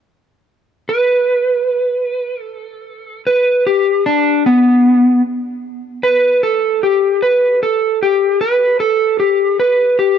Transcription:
0.89 B4
2.42 A4
3.27 B4
3.67 G4
4.06 D4
4.46 B3
6.03 B4
6.43 A4
6.83 G4
7.22 B4
7.63 A4
8.03 G4
8.41 B4
8.80 A4
9.20 G4
9.60 B4
9.99 G4

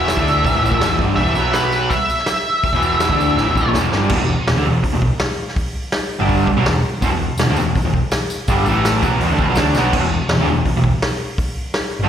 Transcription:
Already playing: E1 E2 B2 E3 E5
0.08 snare, open hi-hat, tambourine
0.16 D2 D3 A3 D4, kick
0.28 tambourine
0.44 A1 A2 E3, kick, open hi-hat, tambourine
0.53 E1 E2 B2, tambourine
0.60 A1 A2
0.64 E3, tambourine
0.71 A#1 A#2 F3, kick
0.78 E1 E2, snare, open hi-hat
0.83 B2 E3, tambourine
0.99 G1 G2 D3 G3, kick, tambourine
1.16 E1 E2 B2 E5, kick, open hi-hat, tambourine
1.20 E3
1.27 tambourine
1.34 B1 B2 F#3 B3, tambourine
1.53 B4, snare, open hi-hat, tambourine
1.72 tambourine
1.89 E5, muted distorted electric guitar stroke, kick, open hi-hat, tambourine
2.10 tambourine
2.18 snare
2.26 snare, open hi-hat, tambourine
2.46 tambourine
2.63 muted picked electric bass stroke, muted distorted electric guitar stroke, kick, open hi-hat, tambourine
2.72 E1 E2 B2 E3, kick, tambourine
2.82 tambourine
3.00 snare, open hi-hat, tambourine
3.10 D2 D3 A3 D4, kick, tambourine
3.21 tambourine
3.36 A1 A2 E3, snare, tambourine
3.47 E1 E2 B2, tambourine
3.56 A1 A2 E3, kick, tambourine
3.66 A#1 A#2 F3
3.74 E1 E2 B2 E3, snare, tambourine
3.86 tambourine
3.92 G1 G2 D3 G3, snare, tambourine
4.04 tambourine
4.09 E1 E2 B2, kick, crash
4.20 E1 E2 B2
4.47 E1 E2 B2, snare, open hi-hat
4.55 D2 D3 A3
4.65 E1 E2 B2
4.83 muted distorted electric guitar stroke, muted picked electric bass stroke, kick, open hi-hat
4.92 E1 E2 B2
5.02 kick
5.19 snare, open hi-hat
5.48 snare
5.56 kick, open hi-hat
5.92 snare, open hi-hat
6.19 G1 G2 D3 G3
6.29 kick, open hi-hat
6.47 muted distorted electric guitar stroke, kick
6.56 B1 B2 F#3
6.66 E1 E2 B2, snare, open hi-hat
7.02 E1 E2 B2, kick, open hi-hat, tambourine
7.10 E1 E2 B2
7.37 E1 E2 B2, snare, open hi-hat, tambourine
7.46 D2 D3
7.50 A3
7.55 E1 E2 B2, tambourine
7.75 muted picked electric bass stroke, muted distorted electric guitar stroke, kick, open hi-hat, tambourine
7.82 E1 E2 B2
7.94 kick
8.11 snare, open hi-hat, tambourine
8.30 tambourine
8.48 G1 G2 D3 G3, kick, open hi-hat, tambourine
8.64 A1 A2, tambourine
8.68 E3 A3
8.85 snare, open hi-hat, tambourine
9.02 B1 B2 F#3 B3, kick, tambourine
9.20 E1 E2 B2, open hi-hat, tambourine
9.30 D2 D3 A3
9.38 E1 E2 B2, kick, tambourine
9.46 B1 B2 F#3
9.55 D2 D3 A3 D4, snare, open hi-hat, tambourine
9.74 B1 B2 F#3 B3, snare, tambourine
9.93 E1 E2 B2, kick, crash
10.01 E1 E2 B2
10.29 E1 E2 B2, snare, open hi-hat
10.37 D2 D3 A3
10.46 E1 E2 B2
10.65 muted picked electric bass stroke, muted distorted electric guitar stroke, kick, open hi-hat
10.73 E1 E2
10.77 B2
10.84 kick
11.02 snare, open hi-hat
11.38 kick, open hi-hat
11.74 snare, open hi-hat
11.99 G1 G2
12.03 D3 G3

